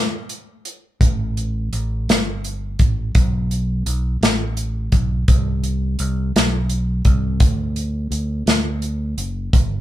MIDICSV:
0, 0, Header, 1, 3, 480
1, 0, Start_track
1, 0, Key_signature, 1, "major"
1, 0, Tempo, 710900
1, 679, Time_signature, 6, 3, 24, 8
1, 6623, End_track
2, 0, Start_track
2, 0, Title_t, "Fingered electric bass"
2, 0, Program_c, 0, 33
2, 684, Note_on_c, 0, 33, 89
2, 1138, Note_off_c, 0, 33, 0
2, 1165, Note_on_c, 0, 33, 78
2, 1391, Note_off_c, 0, 33, 0
2, 1407, Note_on_c, 0, 31, 63
2, 1861, Note_off_c, 0, 31, 0
2, 1888, Note_on_c, 0, 33, 57
2, 2113, Note_off_c, 0, 33, 0
2, 2127, Note_on_c, 0, 35, 90
2, 2580, Note_off_c, 0, 35, 0
2, 2606, Note_on_c, 0, 35, 82
2, 2832, Note_off_c, 0, 35, 0
2, 2842, Note_on_c, 0, 33, 63
2, 3297, Note_off_c, 0, 33, 0
2, 3327, Note_on_c, 0, 35, 73
2, 3552, Note_off_c, 0, 35, 0
2, 3566, Note_on_c, 0, 36, 84
2, 4018, Note_off_c, 0, 36, 0
2, 4049, Note_on_c, 0, 36, 79
2, 4271, Note_off_c, 0, 36, 0
2, 4291, Note_on_c, 0, 35, 73
2, 4737, Note_off_c, 0, 35, 0
2, 4762, Note_on_c, 0, 36, 81
2, 4985, Note_off_c, 0, 36, 0
2, 5000, Note_on_c, 0, 38, 85
2, 5449, Note_off_c, 0, 38, 0
2, 5474, Note_on_c, 0, 38, 80
2, 5699, Note_off_c, 0, 38, 0
2, 5714, Note_on_c, 0, 38, 75
2, 6168, Note_off_c, 0, 38, 0
2, 6195, Note_on_c, 0, 30, 67
2, 6422, Note_off_c, 0, 30, 0
2, 6437, Note_on_c, 0, 31, 86
2, 6623, Note_off_c, 0, 31, 0
2, 6623, End_track
3, 0, Start_track
3, 0, Title_t, "Drums"
3, 198, Note_on_c, 9, 42, 48
3, 266, Note_off_c, 9, 42, 0
3, 440, Note_on_c, 9, 42, 51
3, 508, Note_off_c, 9, 42, 0
3, 681, Note_on_c, 9, 36, 97
3, 682, Note_on_c, 9, 42, 78
3, 748, Note_off_c, 9, 36, 0
3, 750, Note_off_c, 9, 42, 0
3, 927, Note_on_c, 9, 42, 42
3, 994, Note_off_c, 9, 42, 0
3, 1166, Note_on_c, 9, 42, 53
3, 1233, Note_off_c, 9, 42, 0
3, 1413, Note_on_c, 9, 42, 67
3, 1417, Note_on_c, 9, 38, 94
3, 1481, Note_off_c, 9, 42, 0
3, 1485, Note_off_c, 9, 38, 0
3, 1650, Note_on_c, 9, 42, 44
3, 1717, Note_off_c, 9, 42, 0
3, 1885, Note_on_c, 9, 42, 55
3, 1888, Note_on_c, 9, 36, 73
3, 1952, Note_off_c, 9, 42, 0
3, 1955, Note_off_c, 9, 36, 0
3, 2125, Note_on_c, 9, 42, 75
3, 2128, Note_on_c, 9, 36, 92
3, 2193, Note_off_c, 9, 42, 0
3, 2195, Note_off_c, 9, 36, 0
3, 2370, Note_on_c, 9, 42, 46
3, 2438, Note_off_c, 9, 42, 0
3, 2609, Note_on_c, 9, 42, 57
3, 2676, Note_off_c, 9, 42, 0
3, 2854, Note_on_c, 9, 42, 67
3, 2858, Note_on_c, 9, 38, 92
3, 2922, Note_off_c, 9, 42, 0
3, 2926, Note_off_c, 9, 38, 0
3, 3085, Note_on_c, 9, 42, 48
3, 3153, Note_off_c, 9, 42, 0
3, 3322, Note_on_c, 9, 42, 51
3, 3325, Note_on_c, 9, 36, 71
3, 3390, Note_off_c, 9, 42, 0
3, 3393, Note_off_c, 9, 36, 0
3, 3565, Note_on_c, 9, 42, 74
3, 3567, Note_on_c, 9, 36, 97
3, 3633, Note_off_c, 9, 42, 0
3, 3634, Note_off_c, 9, 36, 0
3, 3805, Note_on_c, 9, 42, 44
3, 3872, Note_off_c, 9, 42, 0
3, 4043, Note_on_c, 9, 42, 60
3, 4110, Note_off_c, 9, 42, 0
3, 4293, Note_on_c, 9, 42, 63
3, 4297, Note_on_c, 9, 38, 98
3, 4360, Note_off_c, 9, 42, 0
3, 4364, Note_off_c, 9, 38, 0
3, 4520, Note_on_c, 9, 42, 51
3, 4588, Note_off_c, 9, 42, 0
3, 4758, Note_on_c, 9, 42, 55
3, 4761, Note_on_c, 9, 36, 73
3, 4826, Note_off_c, 9, 42, 0
3, 4829, Note_off_c, 9, 36, 0
3, 4997, Note_on_c, 9, 42, 75
3, 4999, Note_on_c, 9, 36, 98
3, 5064, Note_off_c, 9, 42, 0
3, 5067, Note_off_c, 9, 36, 0
3, 5240, Note_on_c, 9, 42, 44
3, 5308, Note_off_c, 9, 42, 0
3, 5481, Note_on_c, 9, 42, 57
3, 5548, Note_off_c, 9, 42, 0
3, 5720, Note_on_c, 9, 42, 74
3, 5724, Note_on_c, 9, 38, 91
3, 5788, Note_off_c, 9, 42, 0
3, 5792, Note_off_c, 9, 38, 0
3, 5956, Note_on_c, 9, 42, 45
3, 6023, Note_off_c, 9, 42, 0
3, 6197, Note_on_c, 9, 42, 55
3, 6264, Note_off_c, 9, 42, 0
3, 6437, Note_on_c, 9, 36, 94
3, 6437, Note_on_c, 9, 42, 77
3, 6504, Note_off_c, 9, 36, 0
3, 6505, Note_off_c, 9, 42, 0
3, 6623, End_track
0, 0, End_of_file